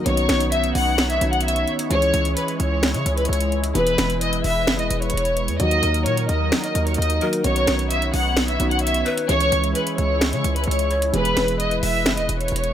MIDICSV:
0, 0, Header, 1, 7, 480
1, 0, Start_track
1, 0, Tempo, 461538
1, 61, Time_signature, 4, 2, 24, 8
1, 13243, End_track
2, 0, Start_track
2, 0, Title_t, "Violin section"
2, 0, Program_c, 0, 48
2, 60, Note_on_c, 0, 73, 115
2, 512, Note_off_c, 0, 73, 0
2, 541, Note_on_c, 0, 76, 96
2, 756, Note_off_c, 0, 76, 0
2, 781, Note_on_c, 0, 78, 87
2, 1120, Note_off_c, 0, 78, 0
2, 1142, Note_on_c, 0, 76, 86
2, 1357, Note_off_c, 0, 76, 0
2, 1381, Note_on_c, 0, 78, 83
2, 1489, Note_off_c, 0, 78, 0
2, 1502, Note_on_c, 0, 76, 96
2, 1717, Note_off_c, 0, 76, 0
2, 1982, Note_on_c, 0, 73, 127
2, 2433, Note_off_c, 0, 73, 0
2, 2462, Note_on_c, 0, 71, 86
2, 2677, Note_off_c, 0, 71, 0
2, 2702, Note_on_c, 0, 73, 86
2, 3040, Note_off_c, 0, 73, 0
2, 3061, Note_on_c, 0, 73, 85
2, 3277, Note_off_c, 0, 73, 0
2, 3301, Note_on_c, 0, 71, 82
2, 3409, Note_off_c, 0, 71, 0
2, 3421, Note_on_c, 0, 73, 81
2, 3637, Note_off_c, 0, 73, 0
2, 3902, Note_on_c, 0, 71, 115
2, 4353, Note_off_c, 0, 71, 0
2, 4382, Note_on_c, 0, 75, 91
2, 4597, Note_off_c, 0, 75, 0
2, 4622, Note_on_c, 0, 76, 94
2, 4960, Note_off_c, 0, 76, 0
2, 4982, Note_on_c, 0, 75, 76
2, 5197, Note_off_c, 0, 75, 0
2, 5222, Note_on_c, 0, 73, 91
2, 5786, Note_off_c, 0, 73, 0
2, 5821, Note_on_c, 0, 75, 112
2, 6273, Note_off_c, 0, 75, 0
2, 6301, Note_on_c, 0, 73, 93
2, 6516, Note_off_c, 0, 73, 0
2, 6542, Note_on_c, 0, 75, 80
2, 6880, Note_off_c, 0, 75, 0
2, 6901, Note_on_c, 0, 75, 78
2, 7116, Note_off_c, 0, 75, 0
2, 7141, Note_on_c, 0, 73, 86
2, 7249, Note_off_c, 0, 73, 0
2, 7262, Note_on_c, 0, 75, 95
2, 7477, Note_off_c, 0, 75, 0
2, 7741, Note_on_c, 0, 73, 110
2, 8193, Note_off_c, 0, 73, 0
2, 8222, Note_on_c, 0, 76, 95
2, 8437, Note_off_c, 0, 76, 0
2, 8461, Note_on_c, 0, 78, 83
2, 8800, Note_off_c, 0, 78, 0
2, 8822, Note_on_c, 0, 76, 85
2, 9037, Note_off_c, 0, 76, 0
2, 9062, Note_on_c, 0, 78, 83
2, 9169, Note_off_c, 0, 78, 0
2, 9182, Note_on_c, 0, 76, 98
2, 9397, Note_off_c, 0, 76, 0
2, 9662, Note_on_c, 0, 73, 127
2, 10113, Note_off_c, 0, 73, 0
2, 10141, Note_on_c, 0, 71, 87
2, 10356, Note_off_c, 0, 71, 0
2, 10381, Note_on_c, 0, 73, 90
2, 10720, Note_off_c, 0, 73, 0
2, 10742, Note_on_c, 0, 73, 85
2, 10957, Note_off_c, 0, 73, 0
2, 10981, Note_on_c, 0, 71, 82
2, 11089, Note_off_c, 0, 71, 0
2, 11101, Note_on_c, 0, 73, 82
2, 11316, Note_off_c, 0, 73, 0
2, 11582, Note_on_c, 0, 71, 118
2, 12033, Note_off_c, 0, 71, 0
2, 12062, Note_on_c, 0, 75, 94
2, 12277, Note_off_c, 0, 75, 0
2, 12302, Note_on_c, 0, 76, 93
2, 12640, Note_off_c, 0, 76, 0
2, 12661, Note_on_c, 0, 75, 76
2, 12876, Note_off_c, 0, 75, 0
2, 12901, Note_on_c, 0, 73, 85
2, 13243, Note_off_c, 0, 73, 0
2, 13243, End_track
3, 0, Start_track
3, 0, Title_t, "Pan flute"
3, 0, Program_c, 1, 75
3, 7502, Note_on_c, 1, 70, 91
3, 7730, Note_off_c, 1, 70, 0
3, 9422, Note_on_c, 1, 71, 92
3, 9650, Note_off_c, 1, 71, 0
3, 11341, Note_on_c, 1, 73, 69
3, 11569, Note_off_c, 1, 73, 0
3, 13243, End_track
4, 0, Start_track
4, 0, Title_t, "Analog synth pad"
4, 0, Program_c, 2, 89
4, 61, Note_on_c, 2, 59, 82
4, 61, Note_on_c, 2, 63, 75
4, 62, Note_on_c, 2, 73, 92
4, 1962, Note_off_c, 2, 59, 0
4, 1962, Note_off_c, 2, 63, 0
4, 1982, Note_on_c, 2, 56, 85
4, 1982, Note_on_c, 2, 64, 74
4, 3863, Note_off_c, 2, 73, 0
4, 3902, Note_on_c, 2, 71, 93
4, 5783, Note_off_c, 2, 56, 0
4, 5783, Note_off_c, 2, 64, 0
4, 5803, Note_off_c, 2, 71, 0
4, 5821, Note_on_c, 2, 54, 84
4, 5821, Note_on_c, 2, 63, 75
4, 5821, Note_on_c, 2, 70, 93
4, 7722, Note_off_c, 2, 54, 0
4, 7722, Note_off_c, 2, 70, 0
4, 7742, Note_on_c, 2, 59, 81
4, 7742, Note_on_c, 2, 73, 92
4, 9623, Note_off_c, 2, 63, 0
4, 9643, Note_off_c, 2, 59, 0
4, 9662, Note_on_c, 2, 56, 83
4, 9663, Note_on_c, 2, 64, 75
4, 11543, Note_off_c, 2, 73, 0
4, 11582, Note_on_c, 2, 71, 91
4, 13243, Note_off_c, 2, 56, 0
4, 13243, Note_off_c, 2, 64, 0
4, 13243, Note_off_c, 2, 71, 0
4, 13243, End_track
5, 0, Start_track
5, 0, Title_t, "Grand piano"
5, 0, Program_c, 3, 0
5, 0, Control_c, 3, 64, 127
5, 50, Note_on_c, 3, 51, 73
5, 58, Note_on_c, 3, 59, 67
5, 65, Note_on_c, 3, 61, 64
5, 73, Note_on_c, 3, 66, 77
5, 77, Control_c, 3, 64, 0
5, 268, Control_c, 3, 64, 127
5, 1231, Note_off_c, 3, 51, 0
5, 1236, Note_off_c, 3, 59, 0
5, 1239, Note_off_c, 3, 61, 0
5, 1243, Note_off_c, 3, 66, 0
5, 1257, Note_on_c, 3, 51, 57
5, 1261, Note_on_c, 3, 59, 48
5, 1265, Note_on_c, 3, 61, 47
5, 1269, Note_on_c, 3, 66, 60
5, 1971, Note_off_c, 3, 61, 0
5, 1972, Note_on_c, 3, 52, 71
5, 1979, Note_off_c, 3, 51, 0
5, 1979, Note_on_c, 3, 56, 65
5, 1981, Note_off_c, 3, 59, 0
5, 1985, Note_off_c, 3, 66, 0
5, 1987, Note_on_c, 3, 61, 67
5, 1995, Control_c, 3, 64, 0
5, 1995, Note_on_c, 3, 68, 79
5, 2202, Control_c, 3, 64, 127
5, 3858, Note_off_c, 3, 52, 0
5, 3862, Note_off_c, 3, 56, 0
5, 3866, Note_off_c, 3, 61, 0
5, 3870, Note_off_c, 3, 68, 0
5, 3889, Note_on_c, 3, 52, 71
5, 3897, Note_on_c, 3, 56, 60
5, 3905, Note_on_c, 3, 59, 62
5, 3913, Note_on_c, 3, 68, 77
5, 3917, Control_c, 3, 64, 0
5, 4126, Control_c, 3, 64, 127
5, 5777, Note_off_c, 3, 52, 0
5, 5781, Note_off_c, 3, 56, 0
5, 5785, Note_off_c, 3, 59, 0
5, 5789, Note_off_c, 3, 68, 0
5, 5813, Note_on_c, 3, 51, 68
5, 5821, Note_on_c, 3, 54, 69
5, 5829, Note_on_c, 3, 58, 60
5, 5836, Control_c, 3, 64, 0
5, 5837, Note_on_c, 3, 66, 73
5, 6021, Control_c, 3, 64, 127
5, 7464, Note_off_c, 3, 51, 0
5, 7468, Note_off_c, 3, 54, 0
5, 7472, Note_off_c, 3, 58, 0
5, 7476, Note_off_c, 3, 66, 0
5, 7497, Note_on_c, 3, 51, 53
5, 7501, Note_on_c, 3, 54, 48
5, 7505, Note_on_c, 3, 58, 49
5, 7509, Note_on_c, 3, 66, 65
5, 7714, Note_off_c, 3, 51, 0
5, 7730, Note_on_c, 3, 51, 74
5, 7737, Note_off_c, 3, 66, 0
5, 7738, Note_on_c, 3, 59, 65
5, 7741, Note_off_c, 3, 54, 0
5, 7743, Note_off_c, 3, 58, 0
5, 7746, Note_on_c, 3, 61, 64
5, 7753, Note_on_c, 3, 66, 77
5, 7756, Control_c, 3, 64, 0
5, 7914, Control_c, 3, 64, 127
5, 8912, Note_off_c, 3, 51, 0
5, 8916, Note_off_c, 3, 59, 0
5, 8920, Note_off_c, 3, 61, 0
5, 8923, Note_off_c, 3, 66, 0
5, 8938, Note_on_c, 3, 51, 54
5, 8942, Note_on_c, 3, 59, 48
5, 8946, Note_on_c, 3, 61, 48
5, 8950, Note_on_c, 3, 66, 61
5, 9652, Note_off_c, 3, 61, 0
5, 9652, Note_on_c, 3, 52, 69
5, 9660, Note_off_c, 3, 51, 0
5, 9660, Note_on_c, 3, 56, 67
5, 9662, Note_off_c, 3, 59, 0
5, 9666, Note_off_c, 3, 66, 0
5, 9668, Note_on_c, 3, 61, 69
5, 9674, Control_c, 3, 64, 0
5, 9675, Note_on_c, 3, 68, 79
5, 9834, Control_c, 3, 64, 127
5, 11538, Note_off_c, 3, 52, 0
5, 11542, Note_off_c, 3, 56, 0
5, 11546, Note_off_c, 3, 61, 0
5, 11550, Note_off_c, 3, 68, 0
5, 11569, Note_on_c, 3, 52, 69
5, 11577, Note_on_c, 3, 56, 62
5, 11584, Note_on_c, 3, 59, 62
5, 11592, Note_on_c, 3, 68, 74
5, 11597, Control_c, 3, 64, 0
5, 11780, Control_c, 3, 64, 127
5, 13243, Note_off_c, 3, 52, 0
5, 13243, Note_off_c, 3, 56, 0
5, 13243, Note_off_c, 3, 59, 0
5, 13243, Note_off_c, 3, 68, 0
5, 13243, End_track
6, 0, Start_track
6, 0, Title_t, "808-style bass"
6, 0, Program_c, 4, 38
6, 61, Note_on_c, 4, 35, 114
6, 292, Note_off_c, 4, 35, 0
6, 301, Note_on_c, 4, 35, 103
6, 762, Note_off_c, 4, 35, 0
6, 781, Note_on_c, 4, 35, 106
6, 1242, Note_off_c, 4, 35, 0
6, 1261, Note_on_c, 4, 35, 104
6, 1722, Note_off_c, 4, 35, 0
6, 1982, Note_on_c, 4, 37, 108
6, 2212, Note_off_c, 4, 37, 0
6, 2222, Note_on_c, 4, 37, 109
6, 2452, Note_off_c, 4, 37, 0
6, 2702, Note_on_c, 4, 37, 109
6, 3062, Note_on_c, 4, 49, 99
6, 3078, Note_off_c, 4, 37, 0
6, 3176, Note_off_c, 4, 49, 0
6, 3182, Note_on_c, 4, 37, 106
6, 3412, Note_off_c, 4, 37, 0
6, 3421, Note_on_c, 4, 37, 106
6, 3882, Note_off_c, 4, 37, 0
6, 3901, Note_on_c, 4, 28, 114
6, 4132, Note_off_c, 4, 28, 0
6, 4142, Note_on_c, 4, 28, 106
6, 4602, Note_off_c, 4, 28, 0
6, 4622, Note_on_c, 4, 28, 108
6, 4862, Note_on_c, 4, 30, 104
6, 4878, Note_off_c, 4, 28, 0
6, 4982, Note_on_c, 4, 28, 98
6, 4997, Note_off_c, 4, 30, 0
6, 5096, Note_off_c, 4, 28, 0
6, 5102, Note_on_c, 4, 28, 105
6, 5332, Note_off_c, 4, 28, 0
6, 5341, Note_on_c, 4, 28, 111
6, 5702, Note_on_c, 4, 40, 101
6, 5717, Note_off_c, 4, 28, 0
6, 5816, Note_off_c, 4, 40, 0
6, 5822, Note_on_c, 4, 39, 113
6, 6052, Note_off_c, 4, 39, 0
6, 6062, Note_on_c, 4, 39, 108
6, 6302, Note_on_c, 4, 46, 104
6, 6317, Note_off_c, 4, 39, 0
6, 6530, Note_off_c, 4, 46, 0
6, 6542, Note_on_c, 4, 39, 104
6, 6772, Note_off_c, 4, 39, 0
6, 7021, Note_on_c, 4, 39, 103
6, 7252, Note_off_c, 4, 39, 0
6, 7262, Note_on_c, 4, 39, 113
6, 7492, Note_off_c, 4, 39, 0
6, 7741, Note_on_c, 4, 35, 116
6, 7972, Note_off_c, 4, 35, 0
6, 7982, Note_on_c, 4, 35, 107
6, 8442, Note_off_c, 4, 35, 0
6, 8462, Note_on_c, 4, 35, 109
6, 8922, Note_off_c, 4, 35, 0
6, 8942, Note_on_c, 4, 35, 107
6, 9402, Note_off_c, 4, 35, 0
6, 9661, Note_on_c, 4, 37, 113
6, 9892, Note_off_c, 4, 37, 0
6, 9901, Note_on_c, 4, 37, 107
6, 10132, Note_off_c, 4, 37, 0
6, 10382, Note_on_c, 4, 37, 109
6, 10742, Note_on_c, 4, 49, 100
6, 10757, Note_off_c, 4, 37, 0
6, 10856, Note_off_c, 4, 49, 0
6, 10862, Note_on_c, 4, 37, 104
6, 11092, Note_off_c, 4, 37, 0
6, 11102, Note_on_c, 4, 37, 113
6, 11562, Note_off_c, 4, 37, 0
6, 11581, Note_on_c, 4, 28, 108
6, 11812, Note_off_c, 4, 28, 0
6, 11821, Note_on_c, 4, 28, 107
6, 12282, Note_off_c, 4, 28, 0
6, 12301, Note_on_c, 4, 28, 107
6, 12541, Note_on_c, 4, 30, 104
6, 12557, Note_off_c, 4, 28, 0
6, 12662, Note_on_c, 4, 28, 101
6, 12677, Note_off_c, 4, 30, 0
6, 12776, Note_off_c, 4, 28, 0
6, 12781, Note_on_c, 4, 28, 105
6, 13012, Note_off_c, 4, 28, 0
6, 13022, Note_on_c, 4, 28, 109
6, 13243, Note_off_c, 4, 28, 0
6, 13243, End_track
7, 0, Start_track
7, 0, Title_t, "Drums"
7, 61, Note_on_c, 9, 42, 74
7, 165, Note_off_c, 9, 42, 0
7, 181, Note_on_c, 9, 42, 63
7, 285, Note_off_c, 9, 42, 0
7, 301, Note_on_c, 9, 38, 94
7, 301, Note_on_c, 9, 42, 80
7, 308, Note_on_c, 9, 26, 78
7, 405, Note_off_c, 9, 38, 0
7, 405, Note_off_c, 9, 42, 0
7, 412, Note_off_c, 9, 26, 0
7, 421, Note_on_c, 9, 42, 65
7, 525, Note_off_c, 9, 42, 0
7, 541, Note_on_c, 9, 42, 80
7, 645, Note_off_c, 9, 42, 0
7, 661, Note_on_c, 9, 42, 57
7, 765, Note_off_c, 9, 42, 0
7, 781, Note_on_c, 9, 46, 75
7, 885, Note_off_c, 9, 46, 0
7, 1021, Note_on_c, 9, 38, 120
7, 1021, Note_on_c, 9, 42, 76
7, 1027, Note_on_c, 9, 26, 99
7, 1125, Note_off_c, 9, 38, 0
7, 1125, Note_off_c, 9, 42, 0
7, 1131, Note_off_c, 9, 26, 0
7, 1142, Note_on_c, 9, 42, 49
7, 1246, Note_off_c, 9, 42, 0
7, 1262, Note_on_c, 9, 42, 81
7, 1366, Note_off_c, 9, 42, 0
7, 1382, Note_on_c, 9, 42, 50
7, 1462, Note_off_c, 9, 42, 0
7, 1462, Note_on_c, 9, 42, 69
7, 1542, Note_off_c, 9, 42, 0
7, 1542, Note_on_c, 9, 42, 87
7, 1622, Note_off_c, 9, 42, 0
7, 1622, Note_on_c, 9, 42, 57
7, 1726, Note_off_c, 9, 42, 0
7, 1742, Note_on_c, 9, 42, 46
7, 1846, Note_off_c, 9, 42, 0
7, 1862, Note_on_c, 9, 42, 75
7, 1966, Note_off_c, 9, 42, 0
7, 1982, Note_on_c, 9, 42, 79
7, 2086, Note_off_c, 9, 42, 0
7, 2102, Note_on_c, 9, 42, 64
7, 2206, Note_off_c, 9, 42, 0
7, 2222, Note_on_c, 9, 42, 80
7, 2326, Note_off_c, 9, 42, 0
7, 2342, Note_on_c, 9, 42, 63
7, 2446, Note_off_c, 9, 42, 0
7, 2462, Note_on_c, 9, 42, 79
7, 2566, Note_off_c, 9, 42, 0
7, 2582, Note_on_c, 9, 42, 57
7, 2686, Note_off_c, 9, 42, 0
7, 2702, Note_on_c, 9, 42, 54
7, 2806, Note_off_c, 9, 42, 0
7, 2942, Note_on_c, 9, 38, 122
7, 2942, Note_on_c, 9, 42, 77
7, 2948, Note_on_c, 9, 26, 99
7, 3046, Note_off_c, 9, 38, 0
7, 3046, Note_off_c, 9, 42, 0
7, 3052, Note_off_c, 9, 26, 0
7, 3062, Note_on_c, 9, 42, 49
7, 3166, Note_off_c, 9, 42, 0
7, 3182, Note_on_c, 9, 42, 82
7, 3286, Note_off_c, 9, 42, 0
7, 3302, Note_on_c, 9, 42, 50
7, 3381, Note_off_c, 9, 42, 0
7, 3381, Note_on_c, 9, 42, 64
7, 3461, Note_off_c, 9, 42, 0
7, 3461, Note_on_c, 9, 42, 84
7, 3541, Note_off_c, 9, 42, 0
7, 3541, Note_on_c, 9, 42, 58
7, 3645, Note_off_c, 9, 42, 0
7, 3662, Note_on_c, 9, 42, 46
7, 3766, Note_off_c, 9, 42, 0
7, 3781, Note_on_c, 9, 42, 77
7, 3885, Note_off_c, 9, 42, 0
7, 3901, Note_on_c, 9, 42, 77
7, 4005, Note_off_c, 9, 42, 0
7, 4021, Note_on_c, 9, 42, 66
7, 4125, Note_off_c, 9, 42, 0
7, 4141, Note_on_c, 9, 42, 85
7, 4142, Note_on_c, 9, 38, 98
7, 4148, Note_on_c, 9, 26, 77
7, 4245, Note_off_c, 9, 42, 0
7, 4246, Note_off_c, 9, 38, 0
7, 4252, Note_off_c, 9, 26, 0
7, 4262, Note_on_c, 9, 42, 61
7, 4366, Note_off_c, 9, 42, 0
7, 4381, Note_on_c, 9, 42, 82
7, 4485, Note_off_c, 9, 42, 0
7, 4501, Note_on_c, 9, 42, 56
7, 4605, Note_off_c, 9, 42, 0
7, 4621, Note_on_c, 9, 46, 73
7, 4725, Note_off_c, 9, 46, 0
7, 4861, Note_on_c, 9, 38, 123
7, 4861, Note_on_c, 9, 42, 72
7, 4867, Note_on_c, 9, 26, 101
7, 4965, Note_off_c, 9, 38, 0
7, 4965, Note_off_c, 9, 42, 0
7, 4971, Note_off_c, 9, 26, 0
7, 4981, Note_on_c, 9, 42, 49
7, 5085, Note_off_c, 9, 42, 0
7, 5101, Note_on_c, 9, 42, 83
7, 5205, Note_off_c, 9, 42, 0
7, 5221, Note_on_c, 9, 42, 49
7, 5301, Note_off_c, 9, 42, 0
7, 5301, Note_on_c, 9, 42, 66
7, 5381, Note_off_c, 9, 42, 0
7, 5381, Note_on_c, 9, 42, 87
7, 5461, Note_off_c, 9, 42, 0
7, 5461, Note_on_c, 9, 42, 59
7, 5565, Note_off_c, 9, 42, 0
7, 5581, Note_on_c, 9, 42, 60
7, 5685, Note_off_c, 9, 42, 0
7, 5701, Note_on_c, 9, 42, 61
7, 5805, Note_off_c, 9, 42, 0
7, 5821, Note_on_c, 9, 42, 77
7, 5925, Note_off_c, 9, 42, 0
7, 5941, Note_on_c, 9, 42, 65
7, 6045, Note_off_c, 9, 42, 0
7, 6061, Note_on_c, 9, 42, 84
7, 6165, Note_off_c, 9, 42, 0
7, 6181, Note_on_c, 9, 42, 63
7, 6285, Note_off_c, 9, 42, 0
7, 6301, Note_on_c, 9, 42, 77
7, 6405, Note_off_c, 9, 42, 0
7, 6421, Note_on_c, 9, 42, 57
7, 6525, Note_off_c, 9, 42, 0
7, 6541, Note_on_c, 9, 42, 55
7, 6645, Note_off_c, 9, 42, 0
7, 6780, Note_on_c, 9, 38, 122
7, 6781, Note_on_c, 9, 42, 73
7, 6787, Note_on_c, 9, 26, 103
7, 6884, Note_off_c, 9, 38, 0
7, 6885, Note_off_c, 9, 42, 0
7, 6891, Note_off_c, 9, 26, 0
7, 6902, Note_on_c, 9, 42, 50
7, 7006, Note_off_c, 9, 42, 0
7, 7021, Note_on_c, 9, 42, 84
7, 7125, Note_off_c, 9, 42, 0
7, 7141, Note_on_c, 9, 42, 49
7, 7221, Note_off_c, 9, 42, 0
7, 7221, Note_on_c, 9, 42, 64
7, 7301, Note_off_c, 9, 42, 0
7, 7301, Note_on_c, 9, 42, 89
7, 7382, Note_off_c, 9, 42, 0
7, 7382, Note_on_c, 9, 42, 57
7, 7486, Note_off_c, 9, 42, 0
7, 7501, Note_on_c, 9, 42, 44
7, 7605, Note_off_c, 9, 42, 0
7, 7622, Note_on_c, 9, 42, 73
7, 7726, Note_off_c, 9, 42, 0
7, 7741, Note_on_c, 9, 42, 80
7, 7845, Note_off_c, 9, 42, 0
7, 7862, Note_on_c, 9, 42, 65
7, 7966, Note_off_c, 9, 42, 0
7, 7981, Note_on_c, 9, 38, 95
7, 7981, Note_on_c, 9, 42, 80
7, 7988, Note_on_c, 9, 26, 75
7, 8085, Note_off_c, 9, 38, 0
7, 8085, Note_off_c, 9, 42, 0
7, 8092, Note_off_c, 9, 26, 0
7, 8102, Note_on_c, 9, 42, 61
7, 8206, Note_off_c, 9, 42, 0
7, 8222, Note_on_c, 9, 42, 77
7, 8326, Note_off_c, 9, 42, 0
7, 8342, Note_on_c, 9, 42, 57
7, 8446, Note_off_c, 9, 42, 0
7, 8462, Note_on_c, 9, 46, 76
7, 8566, Note_off_c, 9, 46, 0
7, 8701, Note_on_c, 9, 38, 122
7, 8701, Note_on_c, 9, 42, 74
7, 8707, Note_on_c, 9, 26, 96
7, 8805, Note_off_c, 9, 38, 0
7, 8805, Note_off_c, 9, 42, 0
7, 8811, Note_off_c, 9, 26, 0
7, 8822, Note_on_c, 9, 42, 49
7, 8926, Note_off_c, 9, 42, 0
7, 8942, Note_on_c, 9, 42, 83
7, 9046, Note_off_c, 9, 42, 0
7, 9062, Note_on_c, 9, 42, 50
7, 9142, Note_off_c, 9, 42, 0
7, 9142, Note_on_c, 9, 42, 66
7, 9222, Note_off_c, 9, 42, 0
7, 9222, Note_on_c, 9, 42, 85
7, 9302, Note_off_c, 9, 42, 0
7, 9302, Note_on_c, 9, 42, 58
7, 9406, Note_off_c, 9, 42, 0
7, 9422, Note_on_c, 9, 42, 44
7, 9526, Note_off_c, 9, 42, 0
7, 9542, Note_on_c, 9, 42, 76
7, 9646, Note_off_c, 9, 42, 0
7, 9662, Note_on_c, 9, 42, 77
7, 9766, Note_off_c, 9, 42, 0
7, 9782, Note_on_c, 9, 42, 64
7, 9886, Note_off_c, 9, 42, 0
7, 9902, Note_on_c, 9, 42, 82
7, 10006, Note_off_c, 9, 42, 0
7, 10022, Note_on_c, 9, 42, 61
7, 10126, Note_off_c, 9, 42, 0
7, 10142, Note_on_c, 9, 42, 78
7, 10246, Note_off_c, 9, 42, 0
7, 10262, Note_on_c, 9, 42, 58
7, 10366, Note_off_c, 9, 42, 0
7, 10382, Note_on_c, 9, 42, 55
7, 10486, Note_off_c, 9, 42, 0
7, 10621, Note_on_c, 9, 38, 125
7, 10622, Note_on_c, 9, 42, 76
7, 10628, Note_on_c, 9, 26, 102
7, 10725, Note_off_c, 9, 38, 0
7, 10726, Note_off_c, 9, 42, 0
7, 10732, Note_off_c, 9, 26, 0
7, 10742, Note_on_c, 9, 42, 47
7, 10846, Note_off_c, 9, 42, 0
7, 10862, Note_on_c, 9, 42, 82
7, 10966, Note_off_c, 9, 42, 0
7, 10982, Note_on_c, 9, 42, 49
7, 11062, Note_off_c, 9, 42, 0
7, 11062, Note_on_c, 9, 42, 66
7, 11142, Note_off_c, 9, 42, 0
7, 11142, Note_on_c, 9, 42, 83
7, 11222, Note_off_c, 9, 42, 0
7, 11222, Note_on_c, 9, 42, 57
7, 11326, Note_off_c, 9, 42, 0
7, 11342, Note_on_c, 9, 42, 46
7, 11446, Note_off_c, 9, 42, 0
7, 11462, Note_on_c, 9, 42, 75
7, 11566, Note_off_c, 9, 42, 0
7, 11582, Note_on_c, 9, 42, 78
7, 11686, Note_off_c, 9, 42, 0
7, 11702, Note_on_c, 9, 42, 65
7, 11806, Note_off_c, 9, 42, 0
7, 11822, Note_on_c, 9, 38, 97
7, 11822, Note_on_c, 9, 42, 80
7, 11828, Note_on_c, 9, 26, 75
7, 11926, Note_off_c, 9, 38, 0
7, 11926, Note_off_c, 9, 42, 0
7, 11932, Note_off_c, 9, 26, 0
7, 11941, Note_on_c, 9, 42, 62
7, 12046, Note_off_c, 9, 42, 0
7, 12062, Note_on_c, 9, 42, 76
7, 12166, Note_off_c, 9, 42, 0
7, 12182, Note_on_c, 9, 42, 55
7, 12286, Note_off_c, 9, 42, 0
7, 12302, Note_on_c, 9, 46, 77
7, 12406, Note_off_c, 9, 46, 0
7, 12540, Note_on_c, 9, 38, 124
7, 12541, Note_on_c, 9, 42, 75
7, 12547, Note_on_c, 9, 26, 100
7, 12644, Note_off_c, 9, 38, 0
7, 12645, Note_off_c, 9, 42, 0
7, 12651, Note_off_c, 9, 26, 0
7, 12661, Note_on_c, 9, 42, 50
7, 12765, Note_off_c, 9, 42, 0
7, 12782, Note_on_c, 9, 42, 83
7, 12886, Note_off_c, 9, 42, 0
7, 12902, Note_on_c, 9, 42, 49
7, 12982, Note_off_c, 9, 42, 0
7, 12982, Note_on_c, 9, 42, 64
7, 13061, Note_off_c, 9, 42, 0
7, 13061, Note_on_c, 9, 42, 84
7, 13141, Note_off_c, 9, 42, 0
7, 13141, Note_on_c, 9, 42, 56
7, 13243, Note_off_c, 9, 42, 0
7, 13243, End_track
0, 0, End_of_file